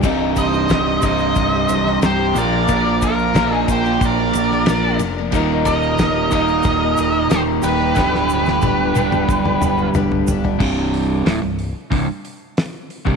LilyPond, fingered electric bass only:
\new Staff \with { instrumentName = "Fingered electric bass" } { \clef bass \time 4/4 \key c \minor \tempo 4 = 91 c,,4 c,,8 c,,8 c,,8 c,,8 c,,8 bes,,8 | bes,,4 bes,,8 bes,,8 bes,,8 bes,,8 bes,,8 f,,8 | ees,,4 ees,,8 ees,,8 ees,,8 ees,,8 ees,,8 ees,,8 | d,,4 d,,8 d,,8 d,,8 d,,8 d,,8 d,,8 |
c,,4 d,,16 c,,8 r16 c,,16 r4. c,,16 | }